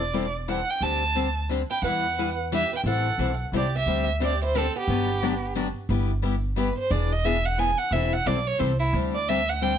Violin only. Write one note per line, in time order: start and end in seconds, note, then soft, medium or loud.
0.00 0.31 D5 medium
0.49 0.71 F#5 medium
0.70 0.84 G5 medium
0.82 1.37 A5 medium
1.71 1.82 G5 medium
1.85 2.35 F#5 medium
2.55 2.72 E5 medium
2.76 2.81 G5 medium
2.88 3.37 F#5 medium
3.57 3.74 D5 medium
3.78 4.07 E5 medium
4.25 4.42 D5 medium
4.44 4.59 C5 medium
4.57 4.77 A4 medium
4.79 5.54 G4 medium
6.58 6.77 B4 medium
6.79 6.93 C5 medium
6.91 7.14 D5 medium
7.13 7.26 D#5 medium
7.25 7.47 E5 medium
7.46 7.61 F#5 medium
7.59 7.80 G#5 medium
7.78 7.94 F#5 medium
7.92 8.15 E5 medium
8.13 8.29 F#5 loud
8.27 8.49 D5 medium
8.47 8.61 C#5 medium
8.60 8.79 C5 medium
8.79 8.88 E4 medium
9.15 9.30 D5 medium
9.29 9.51 E5 medium
9.50 9.64 F#5 medium
9.62 9.78 G5 medium